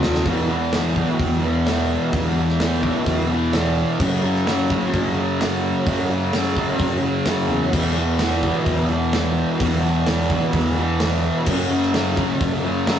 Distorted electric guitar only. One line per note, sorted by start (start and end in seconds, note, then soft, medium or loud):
0.02 0.26 C#3 medium
0.02 0.24 F#3 medium
0.24 0.73 E2 medium
0.24 0.50 B2 medium
0.24 0.49 E3 medium
0.49 0.74 B2 medium
0.49 0.76 E3 medium
0.74 1.67 E2 medium
0.74 0.98 B2 medium
0.74 0.96 E3 medium
0.97 1.44 B2 medium
0.97 1.42 E3 medium
1.42 1.67 B2 medium
1.42 1.69 E3 medium
1.67 2.11 E2 medium
1.67 2.13 B2 medium
1.67 2.14 E3 medium
2.12 2.58 E2 medium
2.12 2.37 B2 medium
2.12 2.35 E3 loud
2.36 2.60 B2 medium
2.36 2.61 E3 medium
2.59 3.06 E2 medium
2.59 2.83 B2 medium
2.59 2.82 E3 medium
2.82 3.31 B2 medium
2.82 3.29 E3 medium
3.30 3.53 B2 medium
3.30 3.55 E3 medium
3.53 3.98 E2 medium
3.53 3.99 B2 medium
3.53 4.01 E3 medium
3.99 4.45 F#2 medium
3.99 4.24 C#3 medium
3.99 4.22 F#3 loud
4.23 4.46 C#3 medium
4.23 4.47 F#3 medium
4.45 5.39 F#2 medium
4.45 4.72 C#3 medium
4.45 4.70 F#3 medium
4.70 5.18 C#3 medium
4.70 5.16 F#3 medium
5.17 5.40 C#3 medium
5.17 5.41 F#3 medium
5.40 5.85 F#2 medium
5.40 5.87 C#3 medium
5.40 5.88 F#3 medium
5.86 6.31 F#2 medium
5.86 6.10 C#3 medium
5.86 6.08 F#3 loud
6.09 6.33 C#3 medium
6.09 6.34 F#3 medium
6.33 6.79 F#2 medium
6.33 6.57 C#3 medium
6.33 6.55 F#3 medium
6.57 7.04 C#3 medium
6.57 7.02 F#3 medium
7.03 7.26 C#3 medium
7.03 7.27 F#3 medium
7.26 7.71 F#2 medium
7.26 7.72 C#3 medium
7.26 7.72 F#3 medium
7.72 8.21 E2 medium
7.72 7.97 B2 medium
7.72 7.96 E3 loud
7.96 8.21 B2 medium
7.96 8.23 E3 medium
8.22 9.13 E2 medium
8.22 8.45 B2 medium
8.22 8.43 E3 medium
8.44 8.91 B2 medium
8.44 8.89 E3 medium
8.90 9.14 B2 medium
8.90 9.15 E3 medium
9.13 9.58 E2 medium
9.13 9.59 B2 medium
9.13 9.61 E3 medium
9.59 10.06 E2 loud
9.59 9.85 B2 medium
9.59 9.84 E3 medium
9.84 10.09 B2 medium
9.84 10.10 E3 medium
10.09 10.54 E2 medium
10.09 10.33 B2 medium
10.09 10.31 E3 medium
10.31 10.79 B2 medium
10.31 10.77 E3 medium
10.78 11.01 B2 medium
10.78 11.04 E3 medium
11.01 11.46 E2 medium
11.01 11.46 B2 medium
11.01 11.50 E3 medium
11.47 11.93 F#2 medium
11.47 11.72 C#3 loud
11.47 11.71 F#3 loud
11.71 11.94 C#3 medium
11.71 11.95 F#3 medium
11.93 12.86 F#2 medium
11.93 12.18 C#3 medium
11.93 12.17 F#3 medium
12.17 12.65 C#3 medium
12.17 12.63 F#3 medium
12.64 12.87 C#3 medium
12.64 12.88 F#3 medium
12.87 12.99 F#2 medium
12.87 12.99 C#3 medium
12.87 12.99 F#3 medium